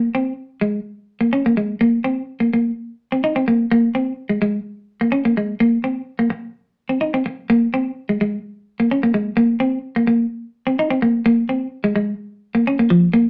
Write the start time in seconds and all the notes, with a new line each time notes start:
0.15 C4
0.61 G#3
1.21 A#3
1.33 C#4
1.46 A#3
1.57 G#3
1.81 A#3
2.04 C4
2.40 A#3
2.53 A#3
3.12 C4
3.24 D#4
3.36 C4
3.48 A#3
3.71 A#3
3.95 C4
4.29 G#3
4.42 G#3
5.01 A#3
5.12 C#4
5.25 A#3
5.37 G#3
5.60 A#3
5.84 C4
6.19 A#3
6.30 muted clean electric guitar stroke
6.89 C4
7.01 D#4
7.14 C4
7.26 muted clean electric guitar stroke
7.50 A#3
7.74 C4
8.09 G#3
8.21 G#3
8.80 A#3
8.91 C#4
9.03 A#3
9.14 G#3
9.37 A#3
9.60 C4
9.96 A#3
10.07 A#3
10.67 C4
10.79 D#4
10.90 C4
11.02 A#3
11.26 A#3
11.49 C4
11.84 G#3
11.96 G#3
12.55 A#3
12.67 C#4
12.79 A#3
12.90 F3
13.13 A#3